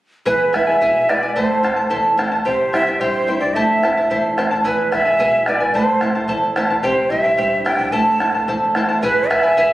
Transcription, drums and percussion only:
0, 0, Header, 1, 2, 480
1, 0, Start_track
1, 0, Key_signature, 0, "minor"
1, 0, Tempo, 547945
1, 230, Time_signature, 2, 2, 24, 8
1, 8523, End_track
2, 0, Start_track
2, 0, Title_t, "Bombo"
2, 230, Note_on_c, 9, 43, 60
2, 318, Note_off_c, 9, 43, 0
2, 475, Note_on_c, 9, 37, 44
2, 475, Note_on_c, 9, 43, 46
2, 562, Note_off_c, 9, 37, 0
2, 562, Note_off_c, 9, 43, 0
2, 592, Note_on_c, 9, 43, 47
2, 680, Note_off_c, 9, 43, 0
2, 717, Note_on_c, 9, 43, 63
2, 805, Note_off_c, 9, 43, 0
2, 958, Note_on_c, 9, 37, 48
2, 1046, Note_off_c, 9, 37, 0
2, 1197, Note_on_c, 9, 43, 67
2, 1285, Note_off_c, 9, 43, 0
2, 1441, Note_on_c, 9, 37, 46
2, 1441, Note_on_c, 9, 43, 49
2, 1529, Note_off_c, 9, 37, 0
2, 1529, Note_off_c, 9, 43, 0
2, 1564, Note_on_c, 9, 43, 47
2, 1652, Note_off_c, 9, 43, 0
2, 1681, Note_on_c, 9, 43, 62
2, 1769, Note_off_c, 9, 43, 0
2, 1919, Note_on_c, 9, 37, 49
2, 2007, Note_off_c, 9, 37, 0
2, 2039, Note_on_c, 9, 43, 46
2, 2127, Note_off_c, 9, 43, 0
2, 2164, Note_on_c, 9, 43, 59
2, 2251, Note_off_c, 9, 43, 0
2, 2399, Note_on_c, 9, 37, 45
2, 2399, Note_on_c, 9, 43, 47
2, 2487, Note_off_c, 9, 37, 0
2, 2487, Note_off_c, 9, 43, 0
2, 2526, Note_on_c, 9, 43, 44
2, 2614, Note_off_c, 9, 43, 0
2, 2641, Note_on_c, 9, 43, 54
2, 2728, Note_off_c, 9, 43, 0
2, 3000, Note_on_c, 9, 43, 45
2, 3088, Note_off_c, 9, 43, 0
2, 3116, Note_on_c, 9, 43, 58
2, 3204, Note_off_c, 9, 43, 0
2, 3359, Note_on_c, 9, 37, 40
2, 3359, Note_on_c, 9, 43, 42
2, 3447, Note_off_c, 9, 37, 0
2, 3447, Note_off_c, 9, 43, 0
2, 3477, Note_on_c, 9, 43, 43
2, 3565, Note_off_c, 9, 43, 0
2, 3595, Note_on_c, 9, 43, 53
2, 3683, Note_off_c, 9, 43, 0
2, 3836, Note_on_c, 9, 37, 43
2, 3923, Note_off_c, 9, 37, 0
2, 3953, Note_on_c, 9, 43, 45
2, 4041, Note_off_c, 9, 43, 0
2, 4070, Note_on_c, 9, 43, 60
2, 4157, Note_off_c, 9, 43, 0
2, 4313, Note_on_c, 9, 37, 41
2, 4313, Note_on_c, 9, 43, 45
2, 4401, Note_off_c, 9, 37, 0
2, 4401, Note_off_c, 9, 43, 0
2, 4431, Note_on_c, 9, 43, 46
2, 4518, Note_off_c, 9, 43, 0
2, 4555, Note_on_c, 9, 43, 58
2, 4642, Note_off_c, 9, 43, 0
2, 4785, Note_on_c, 9, 37, 50
2, 4873, Note_off_c, 9, 37, 0
2, 4910, Note_on_c, 9, 43, 51
2, 4997, Note_off_c, 9, 43, 0
2, 5026, Note_on_c, 9, 43, 66
2, 5114, Note_off_c, 9, 43, 0
2, 5265, Note_on_c, 9, 37, 50
2, 5265, Note_on_c, 9, 43, 50
2, 5353, Note_off_c, 9, 37, 0
2, 5353, Note_off_c, 9, 43, 0
2, 5384, Note_on_c, 9, 43, 52
2, 5472, Note_off_c, 9, 43, 0
2, 5500, Note_on_c, 9, 43, 67
2, 5587, Note_off_c, 9, 43, 0
2, 5747, Note_on_c, 9, 37, 54
2, 5835, Note_off_c, 9, 37, 0
2, 5862, Note_on_c, 9, 43, 54
2, 5950, Note_off_c, 9, 43, 0
2, 5982, Note_on_c, 9, 43, 70
2, 6070, Note_off_c, 9, 43, 0
2, 6229, Note_on_c, 9, 43, 53
2, 6316, Note_off_c, 9, 43, 0
2, 6348, Note_on_c, 9, 43, 53
2, 6436, Note_off_c, 9, 43, 0
2, 6469, Note_on_c, 9, 43, 69
2, 6557, Note_off_c, 9, 43, 0
2, 6711, Note_on_c, 9, 37, 50
2, 6799, Note_off_c, 9, 37, 0
2, 6829, Note_on_c, 9, 43, 57
2, 6917, Note_off_c, 9, 43, 0
2, 6950, Note_on_c, 9, 43, 67
2, 7038, Note_off_c, 9, 43, 0
2, 7186, Note_on_c, 9, 37, 49
2, 7186, Note_on_c, 9, 43, 55
2, 7274, Note_off_c, 9, 37, 0
2, 7274, Note_off_c, 9, 43, 0
2, 7311, Note_on_c, 9, 43, 53
2, 7399, Note_off_c, 9, 43, 0
2, 7427, Note_on_c, 9, 43, 65
2, 7515, Note_off_c, 9, 43, 0
2, 7665, Note_on_c, 9, 37, 51
2, 7752, Note_off_c, 9, 37, 0
2, 7911, Note_on_c, 9, 43, 62
2, 7999, Note_off_c, 9, 43, 0
2, 8154, Note_on_c, 9, 37, 47
2, 8154, Note_on_c, 9, 43, 51
2, 8242, Note_off_c, 9, 37, 0
2, 8242, Note_off_c, 9, 43, 0
2, 8270, Note_on_c, 9, 43, 50
2, 8358, Note_off_c, 9, 43, 0
2, 8389, Note_on_c, 9, 43, 63
2, 8477, Note_off_c, 9, 43, 0
2, 8523, End_track
0, 0, End_of_file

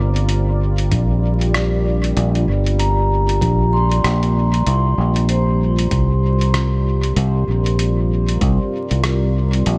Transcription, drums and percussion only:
0, 0, Header, 1, 2, 480
1, 0, Start_track
1, 0, Tempo, 625000
1, 1663, Time_signature, 4, 2, 24, 8
1, 7512, End_track
2, 0, Start_track
2, 0, Title_t, "Drums"
2, 123, Note_on_c, 9, 42, 39
2, 200, Note_off_c, 9, 42, 0
2, 220, Note_on_c, 9, 42, 48
2, 297, Note_off_c, 9, 42, 0
2, 601, Note_on_c, 9, 42, 41
2, 678, Note_off_c, 9, 42, 0
2, 702, Note_on_c, 9, 36, 96
2, 703, Note_on_c, 9, 42, 49
2, 779, Note_off_c, 9, 36, 0
2, 780, Note_off_c, 9, 42, 0
2, 1086, Note_on_c, 9, 42, 38
2, 1162, Note_off_c, 9, 42, 0
2, 1186, Note_on_c, 9, 37, 82
2, 1186, Note_on_c, 9, 42, 47
2, 1263, Note_off_c, 9, 37, 0
2, 1263, Note_off_c, 9, 42, 0
2, 1566, Note_on_c, 9, 42, 37
2, 1643, Note_off_c, 9, 42, 0
2, 1664, Note_on_c, 9, 42, 48
2, 1741, Note_off_c, 9, 42, 0
2, 1806, Note_on_c, 9, 42, 27
2, 1883, Note_off_c, 9, 42, 0
2, 2046, Note_on_c, 9, 42, 41
2, 2123, Note_off_c, 9, 42, 0
2, 2146, Note_on_c, 9, 42, 49
2, 2223, Note_off_c, 9, 42, 0
2, 2527, Note_on_c, 9, 42, 41
2, 2604, Note_off_c, 9, 42, 0
2, 2622, Note_on_c, 9, 36, 94
2, 2627, Note_on_c, 9, 42, 48
2, 2699, Note_off_c, 9, 36, 0
2, 2704, Note_off_c, 9, 42, 0
2, 3007, Note_on_c, 9, 42, 39
2, 3083, Note_off_c, 9, 42, 0
2, 3106, Note_on_c, 9, 37, 84
2, 3106, Note_on_c, 9, 42, 49
2, 3183, Note_off_c, 9, 37, 0
2, 3183, Note_off_c, 9, 42, 0
2, 3247, Note_on_c, 9, 42, 28
2, 3324, Note_off_c, 9, 42, 0
2, 3485, Note_on_c, 9, 42, 38
2, 3562, Note_off_c, 9, 42, 0
2, 3583, Note_on_c, 9, 42, 52
2, 3659, Note_off_c, 9, 42, 0
2, 3962, Note_on_c, 9, 42, 39
2, 4039, Note_off_c, 9, 42, 0
2, 4061, Note_on_c, 9, 42, 51
2, 4138, Note_off_c, 9, 42, 0
2, 4443, Note_on_c, 9, 42, 43
2, 4520, Note_off_c, 9, 42, 0
2, 4540, Note_on_c, 9, 42, 49
2, 4541, Note_on_c, 9, 36, 101
2, 4617, Note_off_c, 9, 42, 0
2, 4618, Note_off_c, 9, 36, 0
2, 4925, Note_on_c, 9, 42, 41
2, 5002, Note_off_c, 9, 42, 0
2, 5023, Note_on_c, 9, 37, 86
2, 5023, Note_on_c, 9, 42, 54
2, 5100, Note_off_c, 9, 37, 0
2, 5100, Note_off_c, 9, 42, 0
2, 5403, Note_on_c, 9, 42, 42
2, 5480, Note_off_c, 9, 42, 0
2, 5502, Note_on_c, 9, 42, 51
2, 5579, Note_off_c, 9, 42, 0
2, 5884, Note_on_c, 9, 42, 42
2, 5960, Note_off_c, 9, 42, 0
2, 5983, Note_on_c, 9, 42, 52
2, 6060, Note_off_c, 9, 42, 0
2, 6363, Note_on_c, 9, 42, 43
2, 6440, Note_off_c, 9, 42, 0
2, 6461, Note_on_c, 9, 36, 107
2, 6461, Note_on_c, 9, 42, 52
2, 6538, Note_off_c, 9, 36, 0
2, 6538, Note_off_c, 9, 42, 0
2, 6842, Note_on_c, 9, 42, 42
2, 6919, Note_off_c, 9, 42, 0
2, 6940, Note_on_c, 9, 37, 91
2, 6940, Note_on_c, 9, 42, 52
2, 7017, Note_off_c, 9, 37, 0
2, 7017, Note_off_c, 9, 42, 0
2, 7322, Note_on_c, 9, 42, 42
2, 7399, Note_off_c, 9, 42, 0
2, 7419, Note_on_c, 9, 42, 54
2, 7496, Note_off_c, 9, 42, 0
2, 7512, End_track
0, 0, End_of_file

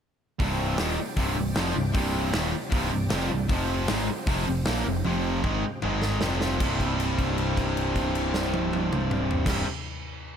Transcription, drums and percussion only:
0, 0, Header, 1, 2, 480
1, 0, Start_track
1, 0, Tempo, 387097
1, 501, Time_signature, 4, 2, 24, 8
1, 12855, End_track
2, 0, Start_track
2, 0, Title_t, "Drums"
2, 496, Note_on_c, 9, 36, 96
2, 502, Note_on_c, 9, 46, 59
2, 620, Note_off_c, 9, 36, 0
2, 626, Note_off_c, 9, 46, 0
2, 967, Note_on_c, 9, 46, 68
2, 968, Note_on_c, 9, 38, 112
2, 1091, Note_off_c, 9, 46, 0
2, 1092, Note_off_c, 9, 38, 0
2, 1447, Note_on_c, 9, 46, 69
2, 1449, Note_on_c, 9, 36, 102
2, 1571, Note_off_c, 9, 46, 0
2, 1573, Note_off_c, 9, 36, 0
2, 1930, Note_on_c, 9, 46, 62
2, 1932, Note_on_c, 9, 38, 108
2, 2054, Note_off_c, 9, 46, 0
2, 2056, Note_off_c, 9, 38, 0
2, 2413, Note_on_c, 9, 46, 63
2, 2414, Note_on_c, 9, 36, 104
2, 2537, Note_off_c, 9, 46, 0
2, 2538, Note_off_c, 9, 36, 0
2, 2896, Note_on_c, 9, 46, 64
2, 2897, Note_on_c, 9, 38, 121
2, 3020, Note_off_c, 9, 46, 0
2, 3021, Note_off_c, 9, 38, 0
2, 3372, Note_on_c, 9, 46, 60
2, 3374, Note_on_c, 9, 36, 103
2, 3496, Note_off_c, 9, 46, 0
2, 3498, Note_off_c, 9, 36, 0
2, 3848, Note_on_c, 9, 46, 56
2, 3850, Note_on_c, 9, 38, 120
2, 3972, Note_off_c, 9, 46, 0
2, 3974, Note_off_c, 9, 38, 0
2, 4333, Note_on_c, 9, 36, 115
2, 4335, Note_on_c, 9, 46, 55
2, 4457, Note_off_c, 9, 36, 0
2, 4459, Note_off_c, 9, 46, 0
2, 4813, Note_on_c, 9, 46, 64
2, 4814, Note_on_c, 9, 38, 119
2, 4937, Note_off_c, 9, 46, 0
2, 4938, Note_off_c, 9, 38, 0
2, 5295, Note_on_c, 9, 46, 64
2, 5296, Note_on_c, 9, 36, 111
2, 5419, Note_off_c, 9, 46, 0
2, 5420, Note_off_c, 9, 36, 0
2, 5773, Note_on_c, 9, 46, 64
2, 5774, Note_on_c, 9, 38, 110
2, 5897, Note_off_c, 9, 46, 0
2, 5898, Note_off_c, 9, 38, 0
2, 6257, Note_on_c, 9, 48, 62
2, 6381, Note_off_c, 9, 48, 0
2, 6745, Note_on_c, 9, 36, 83
2, 6869, Note_off_c, 9, 36, 0
2, 7220, Note_on_c, 9, 45, 90
2, 7344, Note_off_c, 9, 45, 0
2, 7461, Note_on_c, 9, 38, 75
2, 7585, Note_off_c, 9, 38, 0
2, 7697, Note_on_c, 9, 38, 92
2, 7821, Note_off_c, 9, 38, 0
2, 7946, Note_on_c, 9, 38, 80
2, 8070, Note_off_c, 9, 38, 0
2, 8188, Note_on_c, 9, 49, 81
2, 8189, Note_on_c, 9, 36, 101
2, 8312, Note_off_c, 9, 49, 0
2, 8313, Note_off_c, 9, 36, 0
2, 8431, Note_on_c, 9, 36, 64
2, 8438, Note_on_c, 9, 49, 47
2, 8555, Note_off_c, 9, 36, 0
2, 8562, Note_off_c, 9, 49, 0
2, 8676, Note_on_c, 9, 57, 52
2, 8800, Note_off_c, 9, 57, 0
2, 8911, Note_on_c, 9, 36, 62
2, 8913, Note_on_c, 9, 49, 47
2, 9035, Note_off_c, 9, 36, 0
2, 9037, Note_off_c, 9, 49, 0
2, 9149, Note_on_c, 9, 57, 49
2, 9273, Note_off_c, 9, 57, 0
2, 9390, Note_on_c, 9, 49, 46
2, 9391, Note_on_c, 9, 36, 62
2, 9514, Note_off_c, 9, 49, 0
2, 9515, Note_off_c, 9, 36, 0
2, 9635, Note_on_c, 9, 57, 52
2, 9759, Note_off_c, 9, 57, 0
2, 9868, Note_on_c, 9, 36, 68
2, 9870, Note_on_c, 9, 49, 51
2, 9992, Note_off_c, 9, 36, 0
2, 9994, Note_off_c, 9, 49, 0
2, 10108, Note_on_c, 9, 57, 55
2, 10232, Note_off_c, 9, 57, 0
2, 10345, Note_on_c, 9, 38, 96
2, 10469, Note_off_c, 9, 38, 0
2, 10586, Note_on_c, 9, 48, 98
2, 10710, Note_off_c, 9, 48, 0
2, 10828, Note_on_c, 9, 48, 92
2, 10952, Note_off_c, 9, 48, 0
2, 11069, Note_on_c, 9, 47, 102
2, 11193, Note_off_c, 9, 47, 0
2, 11299, Note_on_c, 9, 45, 104
2, 11423, Note_off_c, 9, 45, 0
2, 11541, Note_on_c, 9, 43, 102
2, 11665, Note_off_c, 9, 43, 0
2, 11732, Note_on_c, 9, 36, 107
2, 11741, Note_on_c, 9, 49, 104
2, 11742, Note_on_c, 9, 38, 96
2, 11856, Note_off_c, 9, 36, 0
2, 11865, Note_off_c, 9, 49, 0
2, 11866, Note_off_c, 9, 38, 0
2, 12855, End_track
0, 0, End_of_file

